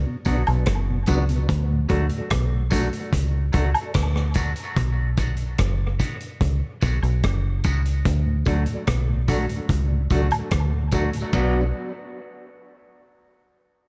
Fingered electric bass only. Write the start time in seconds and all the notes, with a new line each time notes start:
0.26 B1
0.48 B1
0.67 F#1
1.08 C#2
1.49 D2
1.90 D2
2.31 B1
3.13 C#2
3.55 C#2
3.95 D2
4.77 B1
5.59 F#1
6.41 C#2
6.83 B1
7.03 B1
7.24 F#1
7.65 C#2
8.06 D2
8.47 D2
8.88 B1
9.70 C#2
10.11 C#2
10.52 D2
11.33 B1